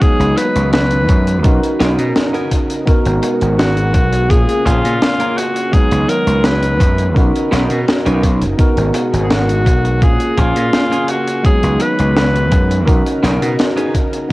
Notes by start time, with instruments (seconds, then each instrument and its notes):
0.00 analog synth pad D#3 F#3 B3, tine electric piano F#3 G#3 B3 D#4, alto saxophone G#4, muted slap bass stroke, kick, closed hi-hat
0.20 slap bass C#2, closed hi-hat
0.37 alto saxophone B4, muted clean electric guitar stroke, closed hi-hat
0.56 slap bass C#2, muted clean electric guitar stroke, closed hi-hat
0.73 alto saxophone B4, snare, closed hi-hat
0.91 closed hi-hat
1.09 slap bass F#2, muted clean electric guitar stroke, kick, closed hi-hat
1.27 muted clean electric guitar stroke, closed hi-hat
1.43 slap bass B1, analog synth pad C#3 D#4 A#4, tine electric piano C#4 D#4 F#4 A#4, kick, closed hi-hat
1.64 closed hi-hat
1.80 slap bass B1, clean electric guitar B3 C#4 D#4 A#4, snare, closed hi-hat
1.99 slap bass B2, closed hi-hat
2.16 snare, closed hi-hat
2.33 clean electric guitar B3 C#4 D#4 A#4, closed hi-hat
2.52 kick, closed hi-hat
2.70 muted clean electric guitar stroke, closed hi-hat
2.85 analog synth pad B2 G#3 F#4, tine electric piano B3 D#4 F#4 A#4, muted slap bass stroke, kick, closed hi-hat
3.05 slap bass G#1, closed hi-hat
3.23 muted clean electric guitar stroke, closed hi-hat
3.41 slap bass G#1, muted clean electric guitar stroke, closed hi-hat
3.59 alto saxophone F#4, snare, closed hi-hat
3.77 closed hi-hat
3.94 slap bass B1, muted clean electric guitar stroke, kick, closed hi-hat
4.12 muted clean electric guitar stroke, closed hi-hat
4.28 slap bass A#1, analog synth pad C#3 A#3 G#4, tine electric piano A#3 C#4 F4 G#4, alto saxophone G#4, kick, closed hi-hat
4.49 closed hi-hat
4.65 slap bass A#1, clean electric guitar A#3 C#4 F4 G#4, alto saxophone F4, kick, closed hi-hat
4.84 slap bass A#2, closed hi-hat
5.02 snare, closed hi-hat
5.20 clean electric guitar A#3 C#4 F4 A#4, closed hi-hat
5.38 alto saxophone F#4, closed hi-hat
5.56 muted clean electric guitar stroke, closed hi-hat
5.72 analog synth pad D#3 F#3 B3, tine electric piano F#3 G#3 B3 D#4, alto saxophone G#4, muted slap bass stroke, kick, closed hi-hat
5.91 slap bass C#2, closed hi-hat
6.09 alto saxophone A#4, muted clean electric guitar stroke, closed hi-hat
6.27 slap bass C#2, muted clean electric guitar stroke, closed hi-hat
6.44 alto saxophone B4, snare, closed hi-hat
6.63 closed hi-hat
6.80 slap bass F#2, muted clean electric guitar stroke, kick, closed hi-hat
6.98 muted clean electric guitar stroke, closed hi-hat
7.14 slap bass B1, analog synth pad C#3 D#4 A#4, tine electric piano C#4 D#4 F#4 A#4, kick, closed hi-hat
7.35 closed hi-hat
7.51 slap bass B1, clean electric guitar B3 C#4 D#4 A#4, snare, closed hi-hat
7.70 slap bass B2, closed hi-hat
7.88 snare, closed hi-hat
8.05 slap bass B1, clean electric guitar B3 C#4 D#4 A#4, closed hi-hat
8.23 kick, closed hi-hat
8.41 slap bass F#1, muted clean electric guitar stroke, closed hi-hat
8.57 analog synth pad B2 G#3 F#4, tine electric piano B3 D#4 F#4 A#4, kick, closed hi-hat
8.77 slap bass G#1, closed hi-hat
8.94 muted clean electric guitar stroke, closed hi-hat
9.13 slap bass G#1, muted clean electric guitar stroke, closed hi-hat
9.23 alto saxophone G#4
9.30 alto saxophone F#4, snare, closed hi-hat
9.49 closed hi-hat
9.66 slap bass B1, muted clean electric guitar stroke, kick, closed hi-hat
9.84 muted clean electric guitar stroke, closed hi-hat
10.01 slap bass A#1, analog synth pad C#3 A#3 G#4, tine electric piano A#3 C#4 F4 G#4, alto saxophone G#4, kick, closed hi-hat
10.20 closed hi-hat
10.37 slap bass A#1, clean electric guitar A#3 C#4 F4 G#4, alto saxophone F4, kick, closed hi-hat
10.56 slap bass A#2, closed hi-hat
10.73 snare, closed hi-hat
10.91 clean electric guitar A#3 C#4 F4 G#4, closed hi-hat
11.08 alto saxophone F#4, closed hi-hat
11.27 muted clean electric guitar stroke, closed hi-hat
11.43 analog synth pad D#3 F#3 B3, tine electric piano F#3 G#3 B3 D#4, alto saxophone G#4, muted slap bass stroke, kick, closed hi-hat
11.63 slap bass C#2, closed hi-hat
11.80 alto saxophone B4, muted clean electric guitar stroke, closed hi-hat
11.99 slap bass C#2, muted clean electric guitar stroke, closed hi-hat
12.16 alto saxophone B4, snare, closed hi-hat
12.36 closed hi-hat
12.52 slap bass F#2, muted clean electric guitar stroke, kick, closed hi-hat
12.70 muted clean electric guitar stroke, closed hi-hat
12.86 slap bass B1, analog synth pad C#3 D#4 A#4, tine electric piano C#4 D#4 F#4 A#4, kick, closed hi-hat
13.06 closed hi-hat
13.23 slap bass B1, clean electric guitar B3 C#4 D#4 A#4, snare, closed hi-hat
13.42 slap bass B2, closed hi-hat
13.59 snare, closed hi-hat
13.77 clean electric guitar B3 C#4 D#4 G#4, closed hi-hat
13.95 kick, closed hi-hat
14.13 muted clean electric guitar stroke, closed hi-hat
14.29 tine electric piano B3